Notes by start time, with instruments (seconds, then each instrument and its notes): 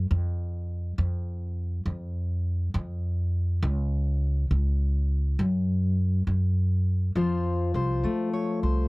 0.11 upright bass F2
0.98 upright bass F2
1.86 upright bass F2
2.74 upright bass F2
3.63 upright bass C#2
4.51 upright bass C#2
5.39 upright bass F#2
6.27 upright bass F#2
7.15 upright bass F2, steel-string acoustic guitar F3 F4 C5
7.74 upright bass C2, steel-string acoustic guitar C5
8.03 upright bass F3, steel-string acoustic guitar A3
8.33 steel-string acoustic guitar C#5
8.63 upright bass C2, steel-string acoustic guitar C5